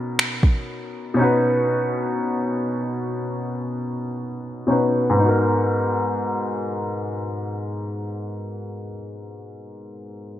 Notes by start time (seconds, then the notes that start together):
Already playing: B2 C#4 D#4 F#4 A#4
0.19 finger snap
0.43 kick
1.14 B2 C#4
1.19 D#4 F#4
1.23 B4
4.67 B2 C#4 D#4 F#4
4.71 B4
5.10 G#2
5.14 B3
5.19 D#4
5.24 F#4
5.29 A#4